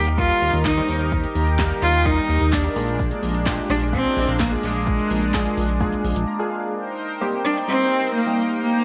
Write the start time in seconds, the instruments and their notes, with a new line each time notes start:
Already playing: analog synth bass D#2, analog synth pad D#3 D#4 G4 A#4
0.07 closed hi-hat, tambourine, shaker
0.18 synth keys G3 A#3 D#4 G4 A#4, cello F4, kick, tambourine, shaker
0.30 closed hi-hat, shaker
0.42 analog synth bass D#2, open hi-hat, tambourine, shaker
0.53 analog synth bass D#2, closed hi-hat, tambourine, shaker
0.65 cello D#4, kick, snare, clap, tambourine, shaker
0.77 synth keys G3 A#3 D#4 G4 C5, closed hi-hat, shaker
0.88 analog synth bass D#2, open hi-hat, tambourine, shaker
1.01 closed hi-hat, shaker
1.12 kick, tambourine, shaker
1.23 closed hi-hat, tambourine, shaker
1.35 analog synth bass D#2, open hi-hat, tambourine, shaker
1.47 closed hi-hat, tambourine, shaker
1.59 synth keys G3 A#3 D#4 G4 A#4, kick, snare, clap, tambourine, shaker
1.71 closed hi-hat, shaker
1.82 analog synth bass D#2, cello F4, open hi-hat, tambourine, shaker
1.94 closed hi-hat, shaker
2.06 synth keys G3 A#3 D#4 G4 A#4, cello D#4, kick, tambourine, shaker
2.17 closed hi-hat, shaker
2.29 analog synth bass D#2, open hi-hat, tambourine, shaker
2.41 analog synth bass D#2, closed hi-hat, tambourine, shaker
2.52 cello D4, kick, snare, clap, tambourine, shaker
2.64 synth keys G3 A#3 D#4 G4 A#4, closed hi-hat, shaker
2.76 analog synth bass A#1, synth keys G#3 A#3 D4 F4 G#4, analog synth pad G#3 A#3 D4, open hi-hat, tambourine, shaker
2.88 closed hi-hat, shaker
2.99 kick, tambourine, shaker
3.11 closed hi-hat, tambourine, shaker
3.23 analog synth bass A#1, open hi-hat, tambourine, shaker
3.34 closed hi-hat, tambourine, shaker
3.46 synth keys G#3 A#3 D4 F4 G4, kick, snare, clap, tambourine, shaker
3.58 closed hi-hat, shaker
3.70 analog synth bass A#1, cello D4, open hi-hat, tambourine, shaker
3.81 closed hi-hat, tambourine, shaker
3.93 synth keys G#3 A#3 D4 F4 G#4, cello C4, kick, tambourine, shaker
4.05 closed hi-hat, shaker
4.17 analog synth bass A#1, open hi-hat, tambourine, shaker
4.28 analog synth bass A#1, closed hi-hat, tambourine, shaker
4.40 cello A#3, kick, snare, clap, tambourine, shaker
4.51 synth keys G#3 A#3 D4 F4 G#4, closed hi-hat, shaker
4.63 analog synth bass A#1, cello G#3, open hi-hat, tambourine, shaker
4.75 closed hi-hat, shaker
4.87 kick, tambourine, shaker
4.99 closed hi-hat, tambourine, shaker
5.10 analog synth bass A#1, open hi-hat, tambourine, shaker
5.22 closed hi-hat, shaker
5.33 synth keys G#3 A#3 D4 F4 G#4, kick, snare, clap, tambourine, shaker
5.46 closed hi-hat, shaker
5.57 analog synth bass A#1, open hi-hat, tambourine, shaker
5.69 closed hi-hat, tambourine, shaker
5.80 synth keys G#3 A#3 D4 F4 G#4, kick, tambourine, shaker
5.92 closed hi-hat, shaker
6.04 analog synth bass A#1, open hi-hat, tambourine, shaker
6.16 analog synth bass A#1, closed hi-hat, shaker
6.28 synth keys A#5
6.39 synth keys G#3 A#3 D4 F4 G#4
6.51 synth keys F5
6.75 analog synth pad D#4 A#4 C5 G5
7.21 synth keys G3 A#3 C4 D#4 G4
7.45 cello D4
7.68 synth keys G3 A#3 C4 D#4 G4, cello C4
8.15 cello A#3
8.26 synth keys G3 A#3 C4 D#4 G4
8.62 cello A#3, analog synth pad F5